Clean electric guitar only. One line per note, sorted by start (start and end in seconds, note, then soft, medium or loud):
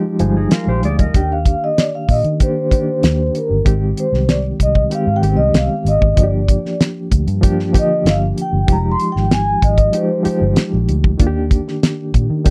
0.37 0.51 D#4 soft
0.37 0.51 G#4 medium
0.52 0.67 F4 medium
0.52 0.67 A#4 medium
0.69 0.83 G4 medium
0.69 0.83 C5 medium
0.85 0.99 G#4 medium
0.85 0.99 D5 medium
1.00 1.29 A#4 soft
1.00 1.29 D#5 medium